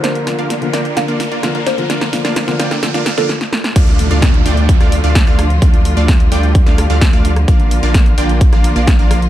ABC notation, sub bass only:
X:1
M:4/4
L:1/16
Q:1/4=129
K:Dm
V:1 name="Sub bass" clef=bass
B,,,3 B,,,3 B,,,3 B,,,2 B,,,2 B,,,3 | B,,,3 B,,,3 B,,,3 B,,,2 z4 z | D,,3 D,,3 D,,3 D,,2 D,,2 D,,3 | D,,3 D,,3 D,,3 D,,2 D,,2 D,,3 |
B,,,3 B,,,3 B,,,3 B,,,2 B,,,2 B,,,3 |]